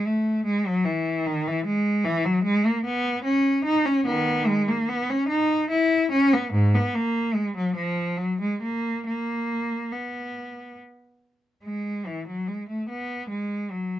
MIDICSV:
0, 0, Header, 1, 2, 480
1, 0, Start_track
1, 0, Key_signature, 5, "major"
1, 0, Tempo, 798935
1, 989, Time_signature, 3, 2, 24, 8
1, 2437, Tempo, 823045
1, 4357, Tempo, 834492
1, 4837, Tempo, 867052
1, 6757, Tempo, 823045
1, 8124, End_track
2, 0, Start_track
2, 0, Title_t, "Cello"
2, 0, Program_c, 0, 42
2, 36, Note_on_c, 0, 57, 79
2, 272, Note_on_c, 0, 56, 83
2, 273, Note_off_c, 0, 57, 0
2, 390, Note_off_c, 0, 56, 0
2, 400, Note_on_c, 0, 54, 84
2, 509, Note_on_c, 0, 52, 80
2, 516, Note_off_c, 0, 54, 0
2, 748, Note_off_c, 0, 52, 0
2, 754, Note_on_c, 0, 51, 82
2, 871, Note_off_c, 0, 51, 0
2, 882, Note_on_c, 0, 52, 87
2, 994, Note_on_c, 0, 56, 91
2, 995, Note_off_c, 0, 52, 0
2, 1227, Note_off_c, 0, 56, 0
2, 1227, Note_on_c, 0, 52, 99
2, 1348, Note_off_c, 0, 52, 0
2, 1351, Note_on_c, 0, 54, 87
2, 1464, Note_on_c, 0, 56, 95
2, 1471, Note_off_c, 0, 54, 0
2, 1585, Note_off_c, 0, 56, 0
2, 1593, Note_on_c, 0, 58, 85
2, 1708, Note_on_c, 0, 59, 94
2, 1713, Note_off_c, 0, 58, 0
2, 1946, Note_on_c, 0, 61, 88
2, 1948, Note_off_c, 0, 59, 0
2, 2187, Note_off_c, 0, 61, 0
2, 2189, Note_on_c, 0, 63, 97
2, 2311, Note_off_c, 0, 63, 0
2, 2314, Note_on_c, 0, 61, 90
2, 2436, Note_off_c, 0, 61, 0
2, 2436, Note_on_c, 0, 51, 77
2, 2438, Note_on_c, 0, 59, 98
2, 2658, Note_off_c, 0, 51, 0
2, 2671, Note_off_c, 0, 59, 0
2, 2673, Note_on_c, 0, 56, 93
2, 2794, Note_off_c, 0, 56, 0
2, 2799, Note_on_c, 0, 58, 80
2, 2917, Note_off_c, 0, 58, 0
2, 2920, Note_on_c, 0, 59, 93
2, 3037, Note_off_c, 0, 59, 0
2, 3042, Note_on_c, 0, 61, 91
2, 3153, Note_on_c, 0, 63, 98
2, 3158, Note_off_c, 0, 61, 0
2, 3387, Note_off_c, 0, 63, 0
2, 3395, Note_on_c, 0, 64, 96
2, 3630, Note_off_c, 0, 64, 0
2, 3636, Note_on_c, 0, 61, 103
2, 3753, Note_off_c, 0, 61, 0
2, 3763, Note_on_c, 0, 59, 84
2, 3877, Note_on_c, 0, 44, 99
2, 3879, Note_off_c, 0, 59, 0
2, 3994, Note_off_c, 0, 44, 0
2, 4004, Note_on_c, 0, 59, 85
2, 4120, Note_off_c, 0, 59, 0
2, 4120, Note_on_c, 0, 58, 89
2, 4352, Note_on_c, 0, 56, 81
2, 4359, Note_off_c, 0, 58, 0
2, 4473, Note_off_c, 0, 56, 0
2, 4480, Note_on_c, 0, 54, 74
2, 4592, Note_on_c, 0, 53, 81
2, 4595, Note_off_c, 0, 54, 0
2, 4830, Note_off_c, 0, 53, 0
2, 4831, Note_on_c, 0, 54, 76
2, 4952, Note_off_c, 0, 54, 0
2, 4960, Note_on_c, 0, 56, 69
2, 5074, Note_off_c, 0, 56, 0
2, 5078, Note_on_c, 0, 58, 76
2, 5313, Note_off_c, 0, 58, 0
2, 5323, Note_on_c, 0, 58, 79
2, 5795, Note_off_c, 0, 58, 0
2, 5798, Note_on_c, 0, 59, 60
2, 6275, Note_off_c, 0, 59, 0
2, 6746, Note_on_c, 0, 56, 54
2, 6978, Note_off_c, 0, 56, 0
2, 6995, Note_on_c, 0, 52, 59
2, 7119, Note_off_c, 0, 52, 0
2, 7119, Note_on_c, 0, 54, 51
2, 7239, Note_off_c, 0, 54, 0
2, 7240, Note_on_c, 0, 56, 54
2, 7361, Note_off_c, 0, 56, 0
2, 7361, Note_on_c, 0, 57, 52
2, 7477, Note_on_c, 0, 59, 62
2, 7479, Note_off_c, 0, 57, 0
2, 7712, Note_off_c, 0, 59, 0
2, 7715, Note_on_c, 0, 56, 61
2, 7950, Note_off_c, 0, 56, 0
2, 7956, Note_on_c, 0, 54, 57
2, 8124, Note_off_c, 0, 54, 0
2, 8124, End_track
0, 0, End_of_file